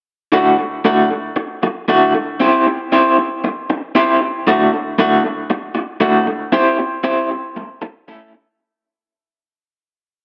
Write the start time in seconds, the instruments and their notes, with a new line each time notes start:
0.32 clean electric guitar A2 D3 A3 F#4
0.58 muted clean electric guitar stroke
0.85 clean electric guitar A2 D3 A3 F#4
1.11 muted clean electric guitar stroke
1.36 muted clean electric guitar stroke
1.63 muted clean electric guitar stroke
1.88 clean electric guitar A2 D3 A3 F#4
2.15 muted clean electric guitar stroke
2.40 clean electric guitar C4 E4 G4 C5
2.67 muted clean electric guitar stroke
2.92 clean electric guitar C4 E4 G4 C5
3.18 muted clean electric guitar stroke
3.44 muted clean electric guitar stroke
3.70 muted clean electric guitar stroke
3.95 clean electric guitar C4 E4 G4 C5
4.21 muted clean electric guitar stroke
4.47 clean electric guitar A2 D3 A3 F#4
4.73 muted clean electric guitar stroke
4.99 clean electric guitar A2 D3 A3 F#4
5.24 muted clean electric guitar stroke
5.50 muted clean electric guitar stroke
5.75 muted clean electric guitar stroke
6.00 clean electric guitar A2 D3 A3 F#4
6.27 muted clean electric guitar stroke
6.52 clean electric guitar C4 E4 G4 C5
6.78 muted clean electric guitar stroke
7.04 clean electric guitar C4 E4 G4 C5
7.31 muted clean electric guitar stroke
7.57 muted clean electric guitar stroke
7.82 muted clean electric guitar stroke
8.08 clean electric guitar A3 C#4 E4 A4
8.34 muted clean electric guitar stroke